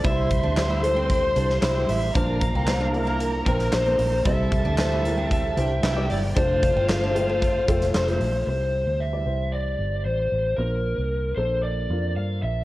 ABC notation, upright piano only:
X:1
M:4/4
L:1/16
Q:1/4=114
K:Cmix
V:1 name="Upright piano"
[G,Ec]3 z [G,Ec]2 [G,EA]3 z [G,Ec]2 z [G,EG]2 z | [B,Dc]3 z [B,Dc]2 [B,DE]3 z [B,Dc]2 z [B,Dc]2 z | [G,Ec]3 z [G,Ec]2 [G,EB]3 z [G,Ec]2 z [G,Ed]2 z | [A,Fc]3 z [A,Fc]2 [A,Fc]3 z [A,FA]2 z [A,Fc]2 z |
[G,Ec]4 z [G,Ed] [G,Ec]6 z4 | [B,Dc]4- [B,Dc] z [B,DA]3 z [B,DF]4- [B,DF] z |]
V:2 name="Upright piano" clef=bass
C,6 z8 z2 | B,,6 z8 z2 | C,6 z8 z2 | z6 g2 a4 c'4 |
C,6 z8 z2 | B,,6 z8 z2 |]